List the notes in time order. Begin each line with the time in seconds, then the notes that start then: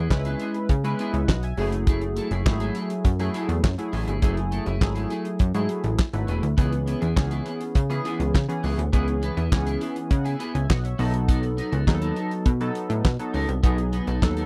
Already playing: E4 G#4
0.10 C#2 G#3 C#4 E4 B4, muted clean electric guitar stroke, kick, snare, clap
0.25 B3 E4 G#4, closed hi-hat
0.40 B3 E4 G#4, closed hi-hat
0.54 muted clean electric guitar stroke, closed hi-hat
0.69 C#3, muted clean electric guitar stroke, kick, closed hi-hat
0.84 G#3 B3 C#4 E4 G#4 B4, closed hi-hat
0.99 B3 E4 G#4, closed hi-hat
1.13 C#2 C#5 E5, muted clean electric guitar stroke, closed hi-hat
1.28 B1 D#5 F#5, muted clean electric guitar stroke, kick, snare, clap
1.43 E5 G#5, muted clean electric guitar stroke, closed hi-hat
1.57 F#1 F#3 A3 E4 G#4, open hi-hat
1.72 muted clean electric guitar stroke, closed hi-hat
1.87 A3 E4 G#4, kick, closed hi-hat
2.01 muted clean electric guitar stroke, closed hi-hat
2.16 A3 E4 A4, closed hi-hat
2.31 F#1 A3 E4 G#4, closed hi-hat
2.45 G#1 F#3 A3 E4 G4, muted clean electric guitar stroke, kick, snare, clap
2.53 G#4
2.60 A3 E4 G#4, closed hi-hat
2.75 A3 E4 G#4, closed hi-hat
2.90 muted clean electric guitar stroke, closed hi-hat
3.05 F#2, muted clean electric guitar stroke, kick, closed hi-hat
3.19 F#3 A3 E4 G#4, closed hi-hat
3.34 A3 E4 G#4, closed hi-hat
3.49 E2, muted clean electric guitar stroke, closed hi-hat
3.63 F#2, muted clean electric guitar stroke, kick, snare, clap
3.78 F#3 A3 E4 G#4, muted clean electric guitar stroke, closed hi-hat
3.93 A1 A3 E4 G#4, open hi-hat
4.07 G1 A3 E4 G#4, closed hi-hat
4.22 F#1 F#3 A3 E4 G#4, kick, closed hi-hat
4.37 muted clean electric guitar stroke, closed hi-hat
4.51 A3 E4 A4, closed hi-hat
4.66 F#1 A3 E4 G#4, closed hi-hat
4.81 G#1 F#3 A3 E4 G#4, muted clean electric guitar stroke, kick, snare, clap
4.95 A3 E4 G#4, closed hi-hat
5.10 A3 E4 G#4, closed hi-hat
5.25 muted clean electric guitar stroke, closed hi-hat
5.39 F#2, muted clean electric guitar stroke, kick, closed hi-hat
5.54 G#2 F#3 A3 E4 G#4, closed hi-hat
5.69 muted clean electric guitar stroke, closed hi-hat
5.84 A1, muted clean electric guitar stroke, closed hi-hat
5.98 muted clean electric guitar stroke, kick, snare, clap
6.13 G#1 F#3 A3 E4 B4, muted clean electric guitar stroke, closed hi-hat
6.27 E1 A3 E4 G#4, closed hi-hat
6.42 D2, muted clean electric guitar stroke, closed hi-hat
6.57 C#2 E3 B3 C#4 E4 G#4, kick, closed hi-hat
6.72 muted clean electric guitar stroke, closed hi-hat
6.87 B3 E4 B4, closed hi-hat
7.01 E2 B3 E4 G#4, closed hi-hat
7.16 C#2 E3 B3 C#4 G#4, muted clean electric guitar stroke, kick, snare, clap
7.31 B3 E4 G#4, closed hi-hat
7.46 B3 E4 G#4, closed hi-hat
7.60 muted clean electric guitar stroke, closed hi-hat
7.75 C#3, muted clean electric guitar stroke, kick, closed hi-hat
7.89 E3 B3 C#4 E4 G#4, closed hi-hat
8.04 B3 E4 G#4, closed hi-hat
8.19 C#2, muted clean electric guitar stroke, closed hi-hat
8.34 C#3, kick, snare, clap
8.48 E3 B3 C#4 G#4, muted clean electric guitar stroke, closed hi-hat
8.63 C#2 B3 E4 G#4, open hi-hat
8.78 D2, muted clean electric guitar stroke, closed hi-hat
8.93 C#2 E3 B3 C#4 E4 G#4, kick, closed hi-hat
9.08 muted clean electric guitar stroke, closed hi-hat
9.22 B3 E4 B4, closed hi-hat
9.37 E2 B3 E4 G#4, closed hi-hat
9.52 C#2 E3 B3 C#4 G#4, muted clean electric guitar stroke, kick, snare, clap
9.66 B3 E4 G#4, closed hi-hat
9.81 B3 E4 G#4, closed hi-hat
9.96 muted clean electric guitar stroke, closed hi-hat
10.10 C#3 D#5 F#5, kick, closed hi-hat
10.25 B3 E4 G#4 E5 G#5, closed hi-hat
10.39 B3 E4 G#4 G#5 B5, closed hi-hat
10.54 C#2 E5 G#5, muted clean electric guitar stroke, closed hi-hat
10.69 B1 D#5 F#5, muted clean electric guitar stroke, kick, snare, clap
10.84 C#5 E5, muted clean electric guitar stroke, closed hi-hat
10.98 B1 F#3 B3 D#4 A4, open hi-hat
11.14 muted clean electric guitar stroke, closed hi-hat
11.28 B3 D#4 A4, kick, closed hi-hat
11.43 muted clean electric guitar stroke, closed hi-hat
11.57 B3 D#4 B4, closed hi-hat
11.72 C#2 B3 D#4 A4, closed hi-hat
11.87 D#2 F#3 B3 D#4 G#4, muted clean electric guitar stroke, kick, snare, clap
11.94 A4
12.01 B3 D#4 A4, closed hi-hat
12.16 B3 D#4 A4, closed hi-hat
12.31 muted clean electric guitar stroke, closed hi-hat
12.46 B2, muted clean electric guitar stroke, kick, closed hi-hat
12.61 F#3 B3 D#4 A4, muted clean electric guitar stroke, closed hi-hat
12.75 closed hi-hat
12.90 A2, muted clean electric guitar stroke, closed hi-hat
13.05 B2, kick, snare, clap
13.19 F#3 B3 D#4 A4, muted clean electric guitar stroke, closed hi-hat
13.34 C#2 B3 D#4 A4, open hi-hat
13.49 C2, muted clean electric guitar stroke, closed hi-hat
13.63 B1 F#3 B3 D#4 G#4 A4, kick, closed hi-hat
13.78 muted clean electric guitar stroke, closed hi-hat
13.92 B3 D#4 B4, closed hi-hat
14.07 B1 B3 D#4 A4, closed hi-hat
14.22 D#2 F#3 B3 D#4 A4, muted clean electric guitar stroke, kick, snare, clap
14.37 B3 D#4 A4, closed hi-hat